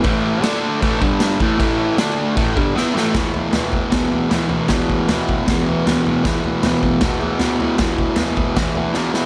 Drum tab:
CC |x-x-x-x-|x-x-x---|--------|--------|
SD |--o---o-|--o---oo|o-o-o-o-|o-o-o-o-|
FT |--------|--------|oooooooo|oooooooo|
BD |o---oo-o|o---oo--|o--oo---|oo-oo---|

CC |--------|--------|
SD |o-o-o-o-|o-o-o-oo|
FT |oooooooo|oooooo--|
BD |o--oo---|oo-oo---|